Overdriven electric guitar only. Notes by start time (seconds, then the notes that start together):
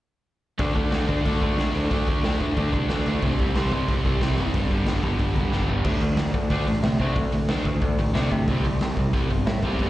0.59 D3 A3 D4
0.75 D3 A3 D4
0.92 D3 A3 D4
1.08 D3 A3 D4
1.25 D3 A3 D4
1.42 D3 A3 D4
1.58 D3 A3 D4
1.75 D3 A3 D4
1.90 D3 A3 D4
2.08 D3 A3 D4
2.24 D3 A3 D4
2.41 D3 A3 D4
2.58 D3 A3 D4
2.73 D3 A3 D4
2.90 D3 A3 D4
3.07 D3 A3 D4
3.23 C3 G3 C4
3.40 C3 G3 C4
3.56 C3 G3 C4
3.72 C3 G3 C4
3.88 C3 G3 C4
4.04 C3 G3 C4
4.21 C3 G3 C4
4.38 C3 G3 C4
4.55 G2 D3 G3
4.71 G2 D3 G3
4.86 G2 D3 G3
5.03 G2 D3 G3
5.19 G2 D3 G3
5.35 G2 D3 G3
5.51 G2 D3 G3
5.68 G2 D3 G3
5.85 D3 A3 D4
6.02 D3 A3
6.18 D3 A3
6.34 D3 A3
6.50 D3 A3 D4
6.67 D3 A3
6.84 D3 A3
7.00 D3 A3 D4
7.16 D3 A3
7.33 D3 A3
7.49 D3 A3 D4
7.66 D3 A3
7.82 D3 A3
7.99 D3 A3
8.14 D3 A3 D4
8.31 D3 A3
8.48 C3 G3 C4
8.65 C3 G3
8.82 C3 G3
8.99 C3 G3
9.13 C3 G3 C4
9.30 C3 G3
9.47 C3 G3
9.63 C3 G3 C4
9.80 G2 D3 G3